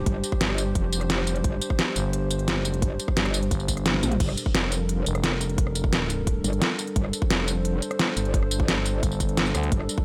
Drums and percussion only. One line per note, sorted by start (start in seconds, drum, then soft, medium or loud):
0.06 kick loud
0.06 closed hi-hat medium
0.24 closed hi-hat medium
0.24 tambourine medium
0.32 kick loud
0.32 cross-stick soft
0.41 snare loud
0.41 closed hi-hat loud
0.49 cross-stick medium
0.58 closed hi-hat medium
0.58 tambourine medium
0.75 kick loud
0.75 closed hi-hat medium
0.93 closed hi-hat medium
0.93 tambourine medium
1.01 cross-stick soft
1.01 closed hi-hat soft
1.10 snare loud
1.10 closed hi-hat medium
1.18 cross-stick medium
1.27 closed hi-hat medium
1.27 tambourine medium
1.36 closed hi-hat soft
1.44 kick loud
1.44 closed hi-hat loud
1.61 closed hi-hat medium
1.61 tambourine medium
1.70 kick loud
1.70 cross-stick soft
1.79 snare loud
1.79 closed hi-hat loud
1.96 closed hi-hat medium
1.96 tambourine medium
2.13 closed hi-hat loud
2.31 closed hi-hat medium
2.31 tambourine medium
2.39 closed hi-hat soft
2.48 snare loud
2.48 closed hi-hat loud
2.65 closed hi-hat medium
2.65 tambourine medium
2.74 closed hi-hat soft
2.82 kick loud
2.82 closed hi-hat loud
2.99 closed hi-hat medium
2.99 tambourine medium
3.08 kick loud
3.08 cross-stick soft
3.17 snare loud
3.17 closed hi-hat loud
3.25 cross-stick medium
3.25 closed hi-hat soft
3.34 closed hi-hat medium
3.34 tambourine medium
3.43 closed hi-hat soft
3.51 kick loud
3.51 closed hi-hat loud
3.51 tambourine soft
3.60 tambourine soft
3.68 kick medium
3.68 closed hi-hat medium
3.68 tambourine medium
3.77 cross-stick soft
3.77 closed hi-hat soft
3.86 snare loud
3.86 closed hi-hat loud
3.94 snare medium
4.03 closed hi-hat medium
4.03 mid tom medium
4.03 tambourine medium
4.12 closed hi-hat soft
4.12 mid tom medium
4.20 kick loud
4.20 closed hi-hat loud
4.20 crash loud
4.29 cross-stick soft
4.37 closed hi-hat medium
4.37 tambourine medium
4.46 kick loud
4.55 snare loud
4.55 closed hi-hat loud
4.63 cross-stick soft
4.72 closed hi-hat medium
4.72 tambourine medium
4.89 closed hi-hat loud
5.06 closed hi-hat medium
5.06 tambourine medium
5.15 cross-stick medium
5.15 closed hi-hat soft
5.24 snare loud
5.24 closed hi-hat loud
5.32 cross-stick soft
5.41 closed hi-hat medium
5.41 tambourine medium
5.49 closed hi-hat soft
5.58 kick loud
5.58 closed hi-hat medium
5.67 cross-stick soft
5.75 closed hi-hat medium
5.75 tambourine medium
5.84 kick loud
5.93 snare loud
5.93 closed hi-hat medium
6.10 closed hi-hat medium
6.10 tambourine medium
6.27 kick loud
6.27 closed hi-hat medium
6.44 closed hi-hat medium
6.44 tambourine medium
6.53 closed hi-hat soft
6.62 snare loud
6.62 closed hi-hat medium
6.79 closed hi-hat medium
6.79 tambourine medium
6.87 closed hi-hat soft
6.96 kick loud
6.96 closed hi-hat medium
7.05 cross-stick soft
7.13 closed hi-hat medium
7.13 tambourine medium
7.22 kick loud
7.30 snare loud
7.30 closed hi-hat medium
7.39 cross-stick soft
7.48 closed hi-hat medium
7.48 tambourine medium
7.65 closed hi-hat medium
7.82 closed hi-hat medium
7.82 tambourine medium
7.91 cross-stick medium
7.91 closed hi-hat soft
7.99 snare loud
7.99 closed hi-hat medium
8.08 cross-stick soft
8.17 closed hi-hat medium
8.17 tambourine medium
8.25 closed hi-hat soft
8.34 kick loud
8.34 closed hi-hat medium
8.43 cross-stick soft
8.51 closed hi-hat medium
8.51 tambourine medium
8.60 kick loud
8.68 snare loud
8.68 closed hi-hat medium
8.77 cross-stick soft
8.86 closed hi-hat medium
8.86 tambourine medium
9.03 kick loud
9.03 closed hi-hat medium
9.03 tambourine soft
9.12 tambourine soft
9.20 kick medium
9.20 closed hi-hat medium
9.20 tambourine medium
9.29 closed hi-hat soft
9.37 snare loud
9.37 closed hi-hat medium
9.46 tambourine soft
9.55 cross-stick medium
9.55 closed hi-hat medium
9.55 tambourine medium
9.63 closed hi-hat soft
9.72 kick loud
9.72 closed hi-hat medium
9.80 cross-stick soft
9.89 closed hi-hat medium
9.89 tambourine medium
9.98 kick loud